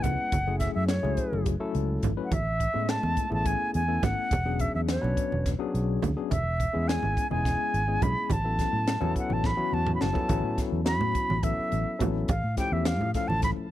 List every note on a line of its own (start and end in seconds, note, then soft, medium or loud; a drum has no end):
0.00 0.32 G#3 medium
0.00 0.33 B3 medium
0.00 0.32 C#4 medium
0.00 0.32 E4 medium
0.00 0.33 B4 medium
0.00 0.59 F#5 medium
0.00 kick medium
0.00 closed hi-hat medium
0.04 0.15 C#2 medium
0.04 low conga medium
0.32 0.67 F#1 medium
0.32 kick loud
0.32 closed hi-hat medium
0.32 high conga medium
0.47 0.98 F#3 medium
0.47 0.98 A3 medium
0.47 0.98 C#4 medium
0.47 0.98 E4 medium
0.47 0.98 G#4 medium
0.47 low conga soft
0.59 0.73 E5 medium
0.59 kick medium
0.59 snare soft
0.59 closed hi-hat medium
0.75 0.99 F#2 medium
0.75 0.87 E5 medium
0.88 1.49 C#5 medium
0.88 snare loud
0.88 closed hi-hat medium
1.03 1.15 C#2 medium
1.03 1.54 F#3 medium
1.03 1.54 A3 medium
1.03 1.54 C#4 medium
1.03 1.54 E4 medium
1.03 1.54 G#4 medium
1.03 low conga medium
1.17 kick medium
1.17 closed hi-hat medium
1.32 1.55 F#1 medium
1.32 high conga medium
1.32 low conga soft
1.46 kick medium
1.46 closed hi-hat medium
1.60 2.11 F#3 medium
1.60 2.11 A3 medium
1.60 2.11 C#4 medium
1.60 2.11 E4 medium
1.60 2.11 A4 medium
1.75 1.98 C#2 medium
1.75 closed hi-hat medium
2.03 2.15 G#1 medium
2.03 kick medium
2.03 closed hi-hat medium
2.03 low conga medium
2.17 2.32 F#3 medium
2.17 2.32 A3 medium
2.17 2.32 C#4 medium
2.17 2.32 E4 medium
2.17 2.32 B4 medium
2.25 2.35 F#5 medium
2.31 2.66 A1 medium
2.31 2.91 E5 medium
2.31 kick loud
2.31 closed hi-hat medium
2.31 high conga medium
2.60 kick medium
2.60 closed hi-hat medium
2.60 low conga soft
2.74 2.98 A2 medium
2.74 3.25 G#3 medium
2.74 3.25 A3 medium
2.74 3.25 B3 medium
2.74 3.25 C#4 medium
2.74 3.25 E4 medium
2.89 3.32 A5 medium
2.89 snare loud
2.89 closed hi-hat medium
3.03 3.15 E2 medium
3.03 low conga medium
3.17 kick medium
3.17 closed hi-hat medium
3.30 3.54 A1 medium
3.30 3.82 A3 medium
3.30 3.82 B3 medium
3.30 3.82 C#4 medium
3.30 3.82 E4 medium
3.30 3.82 G#4 medium
3.30 high conga medium
3.30 low conga soft
3.34 3.48 A5 medium
3.46 3.74 G#5 medium
3.46 kick medium
3.46 closed hi-hat medium
3.74 3.98 E2 medium
3.74 4.05 G#5 medium
3.74 closed hi-hat medium
3.74 low conga soft
3.88 4.31 A3 medium
3.88 4.31 B3 medium
3.88 4.31 C#4 medium
3.88 4.31 E4 medium
3.88 4.31 A4 medium
4.03 4.14 G#1 medium
4.03 4.62 F#5 loud
4.03 kick medium
4.03 snare soft
4.03 closed hi-hat medium
4.03 low conga medium
4.31 4.66 E1 medium
4.31 kick loud
4.31 closed hi-hat medium
4.31 high conga medium
4.45 4.96 F#3 medium
4.45 4.96 B3 medium
4.45 4.97 C#4 medium
4.45 4.97 D4 medium
4.45 4.97 G#4 medium
4.59 4.75 E5 medium
4.59 kick medium
4.59 closed hi-hat medium
4.75 4.97 E2 medium
4.75 4.81 E5 medium
4.88 5.49 C#5 medium
4.88 snare loud
4.88 closed hi-hat medium
5.01 5.14 B1 medium
5.01 5.53 F#3 medium
5.01 5.53 B3 medium
5.01 5.53 C#4 medium
5.01 5.53 D4 medium
5.01 5.53 B4 medium
5.01 low conga medium
5.17 kick medium
5.17 closed hi-hat medium
5.32 5.54 E1 medium
5.32 high conga medium
5.32 low conga soft
5.46 kick medium
5.46 snare soft
5.46 closed hi-hat medium
5.59 6.10 F#3 medium
5.59 6.10 B3 medium
5.59 6.10 C#4 medium
5.59 6.11 D4 medium
5.59 6.11 G#4 medium
5.74 5.97 B1 medium
5.74 closed hi-hat medium
6.02 6.14 D2 medium
6.02 kick medium
6.02 closed hi-hat medium
6.02 low conga medium
6.16 6.31 F#3 medium
6.16 6.31 B3 medium
6.16 6.31 C#4 medium
6.16 6.31 D4 medium
6.16 6.31 G#4 medium
6.31 6.66 E1 medium
6.31 6.90 E5 medium
6.31 kick medium
6.31 closed hi-hat medium
6.31 high conga medium
6.60 kick medium
6.60 closed hi-hat medium
6.60 low conga soft
6.73 6.97 E2 medium
6.73 7.24 G#3 medium
6.73 7.24 B3 medium
6.73 7.24 C#4 medium
6.73 7.25 E4 medium
6.73 7.25 G#4 medium
6.88 7.30 G#5 medium
6.88 snare medium
6.88 closed hi-hat medium
7.03 7.14 G#1 medium
7.03 low conga medium
7.17 kick medium
7.17 closed hi-hat medium
7.31 7.54 E1 medium
7.31 7.82 G#3 medium
7.31 7.82 B3 medium
7.31 7.82 C#4 medium
7.31 7.82 E4 medium
7.31 7.82 G#4 medium
7.31 8.04 G#5 medium
7.31 high conga medium
7.31 low conga soft
7.45 kick medium
7.45 snare soft
7.45 closed hi-hat medium
7.74 7.97 G#1 medium
7.74 closed hi-hat medium
7.74 low conga soft
7.88 8.30 G#3 medium
7.88 8.31 B3 medium
7.88 8.31 C#4 medium
7.88 8.31 E4 medium
7.88 8.31 G#4 medium
8.02 8.13 B1 medium
8.02 8.34 B5 loud
8.02 kick medium
8.02 closed hi-hat medium
8.02 low conga medium
8.30 8.65 A1 medium
8.30 9.17 A5 medium
8.30 kick medium
8.30 closed hi-hat medium
8.30 high conga medium
8.44 8.96 F#3 medium
8.44 8.95 B3 medium
8.44 8.96 C#4 medium
8.44 8.96 E4 medium
8.44 8.96 A4 medium
8.59 kick medium
8.59 snare soft
8.59 closed hi-hat medium
8.73 8.96 A2 medium
8.87 snare loud
8.87 closed hi-hat medium
8.87 low conga soft
9.01 9.13 E2 medium
9.01 9.52 F#3 medium
9.01 9.52 B3 medium
9.01 9.52 C#4 medium
9.01 9.52 E4 medium
9.01 9.52 A4 loud
9.01 low conga medium
9.16 9.35 F#5 medium
9.16 kick medium
9.16 closed hi-hat medium
9.16 low conga soft
9.30 9.53 A1 medium
9.30 9.48 A5 medium
9.30 high conga medium
9.44 9.75 B5 medium
9.44 kick loud
9.44 snare medium
9.57 10.09 F#3 medium
9.57 10.09 B3 medium
9.57 10.09 C#4 medium
9.57 10.09 E4 medium
9.57 10.09 F#4 medium
9.57 high tom soft
9.57 low conga soft
9.73 9.96 E2 medium
9.73 9.95 A5 medium
9.73 high conga soft
9.86 mid tom medium
9.86 high conga medium
9.95 10.03 B5 medium
10.01 10.13 F#1 medium
10.01 10.58 A5 medium
10.01 snare medium
10.01 low conga medium
10.13 10.27 F#3 medium
10.13 10.28 B3 medium
10.13 10.27 C#4 medium
10.13 10.28 E4 medium
10.13 10.28 A4 medium
10.13 kick medium
10.13 low conga medium
10.28 10.41 A1 medium
10.28 10.80 F#3 medium
10.28 10.80 B3 medium
10.28 10.80 C#4 medium
10.28 10.80 E4 medium
10.28 10.80 A4 medium
10.28 kick medium
10.28 closed hi-hat medium
10.28 high conga medium
10.43 10.55 A2 medium
10.58 kick medium
10.58 snare soft
10.58 closed hi-hat medium
10.58 low conga soft
10.72 11.01 E2 medium
10.85 11.37 F#3 medium
10.85 11.37 B3 medium
10.85 11.37 C#4 medium
10.85 11.37 E4 medium
10.85 11.37 F#4 medium
10.85 11.45 B5 medium
10.85 snare loud
10.85 closed hi-hat medium
11.01 11.12 A2 medium
11.01 low conga medium
11.15 muted fingered electric bass stroke soft
11.15 kick medium
11.15 closed hi-hat medium
11.30 11.52 A1 medium
11.30 high conga medium
11.43 11.94 F#3 medium
11.43 11.95 B3 medium
11.43 11.95 C#4 medium
11.43 11.95 E4 medium
11.43 11.95 A4 medium
11.43 12.01 E5 medium
11.43 kick medium
11.43 closed hi-hat medium
11.59 muted fingered electric bass stroke soft
11.72 11.84 A1 medium
11.72 closed hi-hat medium
11.99 12.24 A1 medium
11.99 12.28 F#3 medium
11.99 12.29 B3 medium
11.99 12.28 C#4 medium
11.99 12.29 E4 medium
11.99 12.29 A4 medium
11.99 kick medium
11.99 closed hi-hat medium
11.99 low conga medium
12.28 12.41 A1 medium
12.28 12.56 F5 medium
12.28 kick loud
12.28 closed hi-hat medium
12.28 high conga medium
12.44 12.55 A2 medium
12.57 13.08 F3 medium
12.57 13.08 A3 medium
12.57 13.09 C#4 medium
12.57 13.09 E4 medium
12.57 13.09 G4 medium
12.57 12.74 G5 medium
12.57 kick medium
12.57 snare soft
12.57 closed hi-hat medium
12.57 low conga soft
12.72 13.00 E2 medium
12.72 12.88 E5 medium
12.85 13.14 F5 medium
12.85 snare loud
12.85 closed hi-hat medium
13.00 13.12 A2 medium
13.00 low conga medium
13.14 13.66 F3 medium
13.14 13.66 A3 medium
13.14 13.66 C#4 medium
13.14 13.66 E4 medium
13.14 13.66 A4 medium
13.14 13.29 F5 medium
13.14 kick medium
13.14 snare soft
13.14 closed hi-hat medium
13.28 13.52 A1 medium
13.28 13.43 A5 medium
13.28 high conga medium
13.42 13.50 B5 loud
13.42 kick loud
13.42 snare soft
13.42 closed hi-hat medium